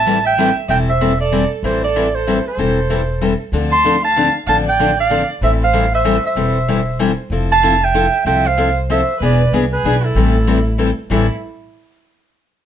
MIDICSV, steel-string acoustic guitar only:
0, 0, Header, 1, 2, 480
1, 0, Start_track
1, 0, Key_signature, 0, "minor"
1, 0, Tempo, 315457
1, 1047, Time_signature, 3, 2, 24, 8
1, 19253, End_track
2, 0, Start_track
2, 0, Title_t, "Steel-string acoustic guitar"
2, 0, Program_c, 0, 25
2, 95, Note_on_c, 0, 52, 81
2, 97, Note_on_c, 0, 55, 78
2, 106, Note_on_c, 0, 60, 87
2, 110, Note_on_c, 0, 64, 84
2, 114, Note_on_c, 0, 69, 83
2, 257, Note_off_c, 0, 52, 0
2, 258, Note_off_c, 0, 55, 0
2, 263, Note_off_c, 0, 60, 0
2, 265, Note_off_c, 0, 64, 0
2, 267, Note_off_c, 0, 69, 0
2, 578, Note_on_c, 0, 52, 84
2, 582, Note_on_c, 0, 55, 84
2, 588, Note_on_c, 0, 64, 87
2, 591, Note_on_c, 0, 60, 89
2, 596, Note_on_c, 0, 69, 100
2, 738, Note_off_c, 0, 52, 0
2, 740, Note_off_c, 0, 55, 0
2, 743, Note_off_c, 0, 64, 0
2, 745, Note_off_c, 0, 60, 0
2, 747, Note_off_c, 0, 69, 0
2, 1049, Note_on_c, 0, 52, 59
2, 1052, Note_on_c, 0, 55, 63
2, 1052, Note_on_c, 0, 60, 66
2, 1060, Note_on_c, 0, 64, 72
2, 1067, Note_on_c, 0, 69, 79
2, 1353, Note_off_c, 0, 52, 0
2, 1354, Note_off_c, 0, 55, 0
2, 1354, Note_off_c, 0, 60, 0
2, 1358, Note_off_c, 0, 64, 0
2, 1361, Note_off_c, 0, 69, 0
2, 1534, Note_on_c, 0, 52, 82
2, 1534, Note_on_c, 0, 55, 79
2, 1540, Note_on_c, 0, 60, 92
2, 1540, Note_on_c, 0, 64, 87
2, 1546, Note_on_c, 0, 69, 91
2, 1695, Note_off_c, 0, 52, 0
2, 1695, Note_off_c, 0, 55, 0
2, 1698, Note_off_c, 0, 60, 0
2, 1698, Note_off_c, 0, 64, 0
2, 1701, Note_off_c, 0, 69, 0
2, 2009, Note_on_c, 0, 52, 80
2, 2010, Note_on_c, 0, 60, 85
2, 2012, Note_on_c, 0, 55, 84
2, 2018, Note_on_c, 0, 69, 87
2, 2020, Note_on_c, 0, 64, 85
2, 2172, Note_off_c, 0, 52, 0
2, 2173, Note_off_c, 0, 60, 0
2, 2174, Note_off_c, 0, 55, 0
2, 2177, Note_off_c, 0, 69, 0
2, 2178, Note_off_c, 0, 64, 0
2, 2496, Note_on_c, 0, 52, 66
2, 2497, Note_on_c, 0, 55, 66
2, 2504, Note_on_c, 0, 60, 67
2, 2506, Note_on_c, 0, 64, 70
2, 2515, Note_on_c, 0, 69, 75
2, 2795, Note_off_c, 0, 52, 0
2, 2795, Note_off_c, 0, 55, 0
2, 2799, Note_off_c, 0, 60, 0
2, 2800, Note_off_c, 0, 64, 0
2, 2805, Note_off_c, 0, 69, 0
2, 2977, Note_on_c, 0, 52, 86
2, 2984, Note_on_c, 0, 60, 92
2, 2986, Note_on_c, 0, 55, 78
2, 2987, Note_on_c, 0, 64, 90
2, 2993, Note_on_c, 0, 69, 87
2, 3136, Note_off_c, 0, 52, 0
2, 3139, Note_off_c, 0, 60, 0
2, 3140, Note_off_c, 0, 55, 0
2, 3141, Note_off_c, 0, 64, 0
2, 3144, Note_off_c, 0, 69, 0
2, 3456, Note_on_c, 0, 52, 91
2, 3461, Note_on_c, 0, 55, 82
2, 3461, Note_on_c, 0, 64, 91
2, 3466, Note_on_c, 0, 60, 83
2, 3470, Note_on_c, 0, 69, 95
2, 3615, Note_off_c, 0, 52, 0
2, 3618, Note_off_c, 0, 55, 0
2, 3618, Note_off_c, 0, 64, 0
2, 3620, Note_off_c, 0, 60, 0
2, 3622, Note_off_c, 0, 69, 0
2, 3929, Note_on_c, 0, 52, 67
2, 3931, Note_on_c, 0, 55, 62
2, 3938, Note_on_c, 0, 60, 65
2, 3945, Note_on_c, 0, 64, 71
2, 3945, Note_on_c, 0, 69, 71
2, 4231, Note_off_c, 0, 52, 0
2, 4232, Note_off_c, 0, 55, 0
2, 4236, Note_off_c, 0, 60, 0
2, 4239, Note_off_c, 0, 64, 0
2, 4239, Note_off_c, 0, 69, 0
2, 4407, Note_on_c, 0, 52, 76
2, 4412, Note_on_c, 0, 60, 79
2, 4416, Note_on_c, 0, 55, 85
2, 4418, Note_on_c, 0, 64, 92
2, 4424, Note_on_c, 0, 69, 87
2, 4571, Note_off_c, 0, 52, 0
2, 4573, Note_off_c, 0, 60, 0
2, 4575, Note_off_c, 0, 55, 0
2, 4576, Note_off_c, 0, 64, 0
2, 4579, Note_off_c, 0, 69, 0
2, 4889, Note_on_c, 0, 52, 86
2, 4893, Note_on_c, 0, 55, 81
2, 4893, Note_on_c, 0, 60, 85
2, 4900, Note_on_c, 0, 64, 82
2, 4902, Note_on_c, 0, 69, 101
2, 5052, Note_off_c, 0, 52, 0
2, 5053, Note_off_c, 0, 60, 0
2, 5054, Note_off_c, 0, 55, 0
2, 5057, Note_off_c, 0, 64, 0
2, 5058, Note_off_c, 0, 69, 0
2, 5368, Note_on_c, 0, 50, 65
2, 5373, Note_on_c, 0, 53, 62
2, 5377, Note_on_c, 0, 60, 67
2, 5385, Note_on_c, 0, 62, 63
2, 5386, Note_on_c, 0, 69, 79
2, 5670, Note_off_c, 0, 50, 0
2, 5673, Note_off_c, 0, 53, 0
2, 5675, Note_off_c, 0, 60, 0
2, 5679, Note_off_c, 0, 62, 0
2, 5679, Note_off_c, 0, 69, 0
2, 5849, Note_on_c, 0, 50, 89
2, 5853, Note_on_c, 0, 53, 89
2, 5860, Note_on_c, 0, 60, 79
2, 5862, Note_on_c, 0, 62, 83
2, 5865, Note_on_c, 0, 69, 95
2, 6011, Note_off_c, 0, 50, 0
2, 6013, Note_off_c, 0, 53, 0
2, 6017, Note_off_c, 0, 60, 0
2, 6018, Note_off_c, 0, 62, 0
2, 6019, Note_off_c, 0, 69, 0
2, 6337, Note_on_c, 0, 53, 83
2, 6341, Note_on_c, 0, 50, 80
2, 6343, Note_on_c, 0, 60, 98
2, 6351, Note_on_c, 0, 69, 91
2, 6354, Note_on_c, 0, 62, 87
2, 6495, Note_off_c, 0, 53, 0
2, 6497, Note_off_c, 0, 50, 0
2, 6498, Note_off_c, 0, 60, 0
2, 6502, Note_off_c, 0, 69, 0
2, 6503, Note_off_c, 0, 62, 0
2, 6814, Note_on_c, 0, 50, 60
2, 6814, Note_on_c, 0, 53, 68
2, 6820, Note_on_c, 0, 60, 67
2, 6827, Note_on_c, 0, 62, 77
2, 6833, Note_on_c, 0, 69, 68
2, 7113, Note_off_c, 0, 50, 0
2, 7113, Note_off_c, 0, 53, 0
2, 7116, Note_off_c, 0, 60, 0
2, 7119, Note_off_c, 0, 62, 0
2, 7123, Note_off_c, 0, 69, 0
2, 7294, Note_on_c, 0, 50, 82
2, 7296, Note_on_c, 0, 53, 91
2, 7300, Note_on_c, 0, 60, 82
2, 7305, Note_on_c, 0, 69, 91
2, 7306, Note_on_c, 0, 62, 84
2, 7454, Note_off_c, 0, 50, 0
2, 7455, Note_off_c, 0, 53, 0
2, 7456, Note_off_c, 0, 60, 0
2, 7459, Note_off_c, 0, 62, 0
2, 7459, Note_off_c, 0, 69, 0
2, 7761, Note_on_c, 0, 50, 80
2, 7765, Note_on_c, 0, 53, 86
2, 7772, Note_on_c, 0, 62, 95
2, 7773, Note_on_c, 0, 60, 89
2, 7775, Note_on_c, 0, 69, 98
2, 7927, Note_off_c, 0, 50, 0
2, 7929, Note_off_c, 0, 53, 0
2, 7933, Note_off_c, 0, 60, 0
2, 7933, Note_off_c, 0, 62, 0
2, 7934, Note_off_c, 0, 69, 0
2, 8251, Note_on_c, 0, 52, 62
2, 8259, Note_on_c, 0, 60, 65
2, 8260, Note_on_c, 0, 55, 62
2, 8264, Note_on_c, 0, 64, 69
2, 8270, Note_on_c, 0, 69, 73
2, 8552, Note_off_c, 0, 52, 0
2, 8556, Note_off_c, 0, 55, 0
2, 8556, Note_off_c, 0, 60, 0
2, 8558, Note_off_c, 0, 64, 0
2, 8561, Note_off_c, 0, 69, 0
2, 8719, Note_on_c, 0, 52, 78
2, 8723, Note_on_c, 0, 55, 87
2, 8729, Note_on_c, 0, 60, 89
2, 8731, Note_on_c, 0, 69, 90
2, 8734, Note_on_c, 0, 64, 96
2, 8886, Note_off_c, 0, 52, 0
2, 8888, Note_off_c, 0, 55, 0
2, 8891, Note_off_c, 0, 60, 0
2, 8892, Note_off_c, 0, 69, 0
2, 8894, Note_off_c, 0, 64, 0
2, 9197, Note_on_c, 0, 52, 80
2, 9203, Note_on_c, 0, 60, 84
2, 9205, Note_on_c, 0, 55, 88
2, 9208, Note_on_c, 0, 69, 85
2, 9212, Note_on_c, 0, 64, 86
2, 9365, Note_off_c, 0, 52, 0
2, 9368, Note_off_c, 0, 60, 0
2, 9369, Note_off_c, 0, 55, 0
2, 9370, Note_off_c, 0, 69, 0
2, 9373, Note_off_c, 0, 64, 0
2, 9678, Note_on_c, 0, 52, 61
2, 9683, Note_on_c, 0, 55, 66
2, 9685, Note_on_c, 0, 60, 74
2, 9686, Note_on_c, 0, 64, 68
2, 9693, Note_on_c, 0, 69, 74
2, 9985, Note_off_c, 0, 52, 0
2, 9987, Note_off_c, 0, 55, 0
2, 9989, Note_off_c, 0, 60, 0
2, 9989, Note_off_c, 0, 64, 0
2, 9993, Note_off_c, 0, 69, 0
2, 10170, Note_on_c, 0, 52, 81
2, 10173, Note_on_c, 0, 55, 80
2, 10173, Note_on_c, 0, 60, 89
2, 10181, Note_on_c, 0, 64, 82
2, 10186, Note_on_c, 0, 69, 84
2, 10332, Note_off_c, 0, 52, 0
2, 10333, Note_off_c, 0, 55, 0
2, 10333, Note_off_c, 0, 60, 0
2, 10337, Note_off_c, 0, 64, 0
2, 10340, Note_off_c, 0, 69, 0
2, 10640, Note_on_c, 0, 52, 91
2, 10647, Note_on_c, 0, 55, 93
2, 10648, Note_on_c, 0, 60, 89
2, 10653, Note_on_c, 0, 64, 83
2, 10658, Note_on_c, 0, 69, 85
2, 10807, Note_off_c, 0, 52, 0
2, 10810, Note_off_c, 0, 55, 0
2, 10811, Note_off_c, 0, 60, 0
2, 10813, Note_off_c, 0, 64, 0
2, 10816, Note_off_c, 0, 69, 0
2, 11130, Note_on_c, 0, 53, 60
2, 11135, Note_on_c, 0, 60, 73
2, 11141, Note_on_c, 0, 69, 69
2, 11143, Note_on_c, 0, 64, 66
2, 11431, Note_off_c, 0, 53, 0
2, 11434, Note_off_c, 0, 60, 0
2, 11437, Note_off_c, 0, 69, 0
2, 11438, Note_off_c, 0, 64, 0
2, 11599, Note_on_c, 0, 53, 80
2, 11606, Note_on_c, 0, 60, 79
2, 11615, Note_on_c, 0, 69, 88
2, 11616, Note_on_c, 0, 64, 93
2, 11766, Note_off_c, 0, 53, 0
2, 11770, Note_off_c, 0, 60, 0
2, 11774, Note_off_c, 0, 69, 0
2, 11775, Note_off_c, 0, 64, 0
2, 12082, Note_on_c, 0, 53, 88
2, 12089, Note_on_c, 0, 60, 90
2, 12095, Note_on_c, 0, 64, 91
2, 12100, Note_on_c, 0, 69, 93
2, 12248, Note_off_c, 0, 53, 0
2, 12251, Note_off_c, 0, 60, 0
2, 12254, Note_off_c, 0, 64, 0
2, 12257, Note_off_c, 0, 69, 0
2, 12567, Note_on_c, 0, 53, 68
2, 12570, Note_on_c, 0, 60, 76
2, 12577, Note_on_c, 0, 64, 66
2, 12582, Note_on_c, 0, 69, 71
2, 12870, Note_off_c, 0, 53, 0
2, 12872, Note_off_c, 0, 60, 0
2, 12875, Note_off_c, 0, 64, 0
2, 12878, Note_off_c, 0, 69, 0
2, 13043, Note_on_c, 0, 53, 83
2, 13050, Note_on_c, 0, 64, 94
2, 13052, Note_on_c, 0, 60, 84
2, 13057, Note_on_c, 0, 69, 96
2, 13208, Note_off_c, 0, 53, 0
2, 13212, Note_off_c, 0, 64, 0
2, 13213, Note_off_c, 0, 60, 0
2, 13215, Note_off_c, 0, 69, 0
2, 13537, Note_on_c, 0, 53, 82
2, 13539, Note_on_c, 0, 60, 83
2, 13546, Note_on_c, 0, 64, 94
2, 13554, Note_on_c, 0, 69, 94
2, 13695, Note_off_c, 0, 53, 0
2, 13696, Note_off_c, 0, 60, 0
2, 13700, Note_off_c, 0, 64, 0
2, 13704, Note_off_c, 0, 69, 0
2, 14022, Note_on_c, 0, 52, 68
2, 14025, Note_on_c, 0, 59, 76
2, 14031, Note_on_c, 0, 62, 72
2, 14034, Note_on_c, 0, 68, 74
2, 14318, Note_off_c, 0, 52, 0
2, 14319, Note_off_c, 0, 59, 0
2, 14322, Note_off_c, 0, 62, 0
2, 14324, Note_off_c, 0, 68, 0
2, 14500, Note_on_c, 0, 52, 83
2, 14510, Note_on_c, 0, 59, 86
2, 14512, Note_on_c, 0, 62, 84
2, 14521, Note_on_c, 0, 68, 89
2, 14657, Note_off_c, 0, 52, 0
2, 14662, Note_off_c, 0, 59, 0
2, 14663, Note_off_c, 0, 62, 0
2, 14668, Note_off_c, 0, 68, 0
2, 14987, Note_on_c, 0, 52, 84
2, 14991, Note_on_c, 0, 59, 87
2, 14998, Note_on_c, 0, 62, 94
2, 14999, Note_on_c, 0, 68, 100
2, 15141, Note_off_c, 0, 52, 0
2, 15143, Note_off_c, 0, 59, 0
2, 15146, Note_off_c, 0, 62, 0
2, 15147, Note_off_c, 0, 68, 0
2, 15459, Note_on_c, 0, 52, 69
2, 15460, Note_on_c, 0, 55, 73
2, 15466, Note_on_c, 0, 60, 70
2, 15470, Note_on_c, 0, 64, 69
2, 15476, Note_on_c, 0, 69, 80
2, 15756, Note_off_c, 0, 52, 0
2, 15757, Note_off_c, 0, 55, 0
2, 15760, Note_off_c, 0, 60, 0
2, 15762, Note_off_c, 0, 64, 0
2, 15765, Note_off_c, 0, 69, 0
2, 15933, Note_on_c, 0, 52, 79
2, 15937, Note_on_c, 0, 55, 84
2, 15937, Note_on_c, 0, 60, 83
2, 15948, Note_on_c, 0, 64, 83
2, 15949, Note_on_c, 0, 69, 92
2, 16094, Note_off_c, 0, 52, 0
2, 16096, Note_off_c, 0, 55, 0
2, 16096, Note_off_c, 0, 60, 0
2, 16101, Note_off_c, 0, 64, 0
2, 16102, Note_off_c, 0, 69, 0
2, 16404, Note_on_c, 0, 52, 85
2, 16406, Note_on_c, 0, 55, 79
2, 16412, Note_on_c, 0, 60, 84
2, 16415, Note_on_c, 0, 64, 96
2, 16421, Note_on_c, 0, 69, 90
2, 16570, Note_off_c, 0, 52, 0
2, 16571, Note_off_c, 0, 55, 0
2, 16574, Note_off_c, 0, 60, 0
2, 16576, Note_off_c, 0, 64, 0
2, 16578, Note_off_c, 0, 69, 0
2, 16886, Note_on_c, 0, 45, 82
2, 16898, Note_on_c, 0, 52, 90
2, 16903, Note_on_c, 0, 55, 80
2, 16905, Note_on_c, 0, 60, 85
2, 16909, Note_on_c, 0, 64, 96
2, 16918, Note_on_c, 0, 69, 91
2, 17118, Note_off_c, 0, 45, 0
2, 17124, Note_off_c, 0, 52, 0
2, 17126, Note_off_c, 0, 55, 0
2, 17127, Note_off_c, 0, 60, 0
2, 17130, Note_off_c, 0, 64, 0
2, 17134, Note_off_c, 0, 69, 0
2, 19253, End_track
0, 0, End_of_file